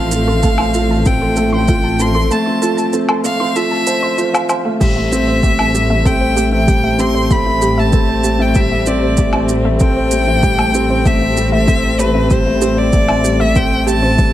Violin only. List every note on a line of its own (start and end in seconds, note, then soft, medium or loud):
0.00 1.08 F5 loud
1.07 1.53 G5 medium
1.55 2.03 G5 medium
2.01 2.33 C6 loud
2.32 2.94 A5 medium
3.25 3.58 F5 loud
3.56 4.50 E5 loud
4.82 6.08 E5 loud
6.06 6.52 G5 loud
6.53 7.01 G5 loud
7.00 7.34 C6 loud
7.32 7.81 B5 loud
7.79 8.43 A5 medium
8.42 8.58 G5 medium
8.56 8.89 E5 loud
8.87 9.50 D5 medium
9.81 11.08 G5 loud
11.07 11.53 E5 medium
11.53 12.02 E5 loud
12.00 12.33 B4 loud
12.32 12.80 C5 loud
12.78 13.43 D5 loud
13.41 13.58 E5 loud
13.57 13.89 G5 loud
13.88 14.33 A5 loud